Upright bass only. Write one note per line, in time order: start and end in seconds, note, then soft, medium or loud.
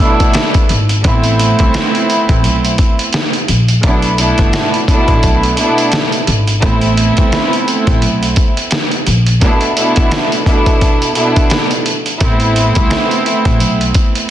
0.70 0.99 G#1 loud
1.05 1.51 A1 loud
1.60 1.72 C2 medium
2.29 2.44 A1 medium
2.44 2.73 B1 loud
3.49 3.78 A#1 medium
3.84 4.30 B1 loud
4.39 4.51 G1 medium
5.08 5.21 A1 medium
5.24 5.53 B1 medium
6.28 6.57 G#1 medium
6.63 7.09 A1 loud
7.18 7.30 C2 medium
7.87 8.02 A1 medium
8.02 8.31 B1 medium
9.07 9.36 A#1 medium
12.21 12.67 A1 loud
12.77 12.89 C2 medium
13.46 13.61 A1 medium
13.61 13.90 B1 medium